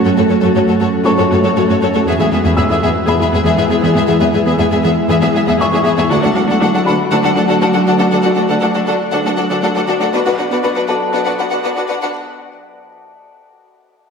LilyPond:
<<
  \new Staff \with { instrumentName = "Felt piano" } { \time 4/4 \key d \lydian \tempo 4 = 119 r2 <cis'' cis'''>2~ | <cis'' cis'''>4 e'''4 b''2~ | b''4 r2 cis'''4~ | cis'''4. b''2~ b''8~ |
b''8 r2. r8 | r4. <a' a''>2~ <a' a''>8 | r1 | }
  \new Staff \with { instrumentName = "Violin section" } { \time 4/4 \key d \lydian <a' cis''>16 <a' cis''>16 <a' cis''>16 <a' cis''>16 <a' cis''>16 <a' cis''>16 <a' cis''>16 r16 <a' cis''>16 <a' cis''>16 <a' cis''>16 <a' cis''>16 <a' cis''>16 <a' cis''>16 <a' cis''>16 <a' cis''>16 | <gis' e''>16 <gis' e''>16 <gis' e''>16 <gis' e''>16 <gis' e''>16 <gis' e''>16 <gis' e''>16 r16 <gis' e''>16 <gis' e''>16 <gis' e''>16 <gis' e''>16 <gis' e''>16 <gis' e''>16 <gis' e''>16 <gis' e''>16 | <gis' e''>16 <gis' e''>16 <gis' e''>16 <gis' e''>16 <gis' e''>16 <gis' e''>16 <gis' e''>16 r16 <gis' e''>16 <gis' e''>16 <gis' e''>16 <gis' e''>16 <gis' e''>16 <gis' e''>16 <gis' e''>16 <gis' e''>16 | <a' fis''>16 <a' fis''>16 <a' fis''>16 <a' fis''>16 <a' fis''>16 <a' fis''>16 <a' fis''>16 r16 <a' fis''>16 <a' fis''>16 <a' fis''>16 <a' fis''>16 <a' fis''>16 <a' fis''>16 <a' fis''>16 <a' fis''>16 |
<a' fis''>16 <a' fis''>16 <a' fis''>16 <a' fis''>16 <a' fis''>16 <a' fis''>16 <a' fis''>16 r16 <a' fis''>16 <a' fis''>16 <a' fis''>16 <a' fis''>16 <a' fis''>16 <a' fis''>16 <a' fis''>16 <a' fis''>16 | <b' fis''>16 <b' fis''>16 <b' fis''>16 <b' fis''>16 <b' fis''>16 <b' fis''>16 <b' fis''>16 r16 <b' fis''>16 <b' fis''>16 <b' fis''>16 <b' fis''>16 <b' fis''>16 <b' fis''>16 <b' fis''>16 <b' fis''>16 | r1 | }
  \new Staff \with { instrumentName = "Viola section" } { \time 4/4 \key d \lydian <a fis'>16 <a fis'>16 <a fis'>16 <a fis'>16 <a fis'>16 <a fis'>16 <a fis'>16 r16 <a fis'>16 <a fis'>16 <a fis'>16 <a fis'>16 <a fis'>16 <a fis'>16 <a fis'>16 <a fis'>16 | <b gis'>16 <b gis'>16 <b gis'>16 <b gis'>16 <b gis'>16 <b gis'>16 <b gis'>16 r16 <b gis'>16 <b gis'>16 <b gis'>16 <b gis'>16 <b gis'>16 <b gis'>16 <b gis'>16 <b gis'>16 | <b gis'>16 <b gis'>16 <b gis'>16 <b gis'>16 <b gis'>16 <b gis'>16 <b gis'>16 r16 <b gis'>16 <b gis'>16 <b gis'>16 <b gis'>16 <b gis'>16 <b gis'>16 <b gis'>16 <b gis'>16 | <d' fis'>16 <d' fis'>16 <d' fis'>16 <d' fis'>16 <d' fis'>16 <d' fis'>16 <d' fis'>16 r16 <d' fis'>16 <d' fis'>16 <d' fis'>16 <d' fis'>16 <d' fis'>16 <d' fis'>16 <d' fis'>16 <d' fis'>16 |
<d' fis'>16 <d' fis'>16 <d' fis'>16 <d' fis'>16 <d' fis'>16 <d' fis'>16 <d' fis'>16 r16 <d' fis'>16 <d' fis'>16 <d' fis'>16 <d' fis'>16 <d' fis'>16 <d' fis'>16 <d' fis'>16 <d' fis'>16 | <d' fis'>16 <d' fis'>16 <d' fis'>16 <d' fis'>16 <d' fis'>16 <d' fis'>16 <d' fis'>16 r16 <d' fis'>16 <d' fis'>16 <d' fis'>16 <d' fis'>16 <d' fis'>16 <d' fis'>16 <d' fis'>16 <d' fis'>16 | r1 | }
  \new Staff \with { instrumentName = "Ambient pad" } { \time 4/4 \key d \lydian <a cis' fis' a'>1 | <gis b e' e''>1~ | <gis b e' e''>1 | <fis a fis' d''>1~ |
<fis a fis' d''>1 | <fis b fis' d''>1 | r1 | }
  \new Staff \with { instrumentName = "Synth pluck" } { \clef bass \time 4/4 \key d \lydian fis16 a16 a16 fis16 a16 a16 fis16 r16 fis16 fis'16 a16 fis16 cis'16 a16 fis16 a16 | e16 gis16 gis16 e16 gis16 gis16 e16 r16 e16 e'16 gis16 e16 b16 gis16 e16 r16 | e16 gis16 gis16 e16 gis16 gis16 e16 r16 e16 e'16 gis16 e16 b16 gis16 e16 gis16 | d16 fis16 fis16 d16 fis16 fis16 d16 r16 d16 d'16 fis16 d16 a16 fis16 d16 r16 |
d16 fis16 fis16 d16 fis16 fis16 d16 r16 d16 d'16 fis16 d16 a16 fis16 d16 fis16 | b16 d'16 d'16 b16 r16 d'16 b16 r16 b16 b'16 d'16 b16 fis'16 d'16 b16 d'16 | r1 | }
  \new Staff \with { instrumentName = "Cello section" } { \clef bass \time 4/4 \key d \lydian fis,16 fis,16 fis,16 fis,16 fis,16 fis,16 fis,16 r16 fis,16 fis,16 fis,16 fis,16 fis,16 fis,16 fis,16 fis,16 | e,16 e,16 e,16 e,16 e,16 e,16 e,16 r16 e,16 e,16 e,16 e,16 e,16 e,16 e,16 e,16 | e,16 e,16 e,16 e,16 e,16 e,16 e,16 r16 e,16 e,16 e,16 e,16 e,16 e,16 e,16 e,16 | d,16 d,16 d,16 d,16 d,16 d,16 d,16 r16 d,16 d,16 d,16 d,16 d,16 d,16 d,16 d,16 |
d,16 d,16 d,16 d,16 d,16 d,16 d,16 r16 d,16 d,16 d,16 d,16 d,16 d,16 d,16 d,16 | b,16 b,16 b,16 b,16 b,16 b,16 b,16 r16 b,16 b,16 b,16 b,16 b,16 b,16 b,16 b,16 | r1 | }
>>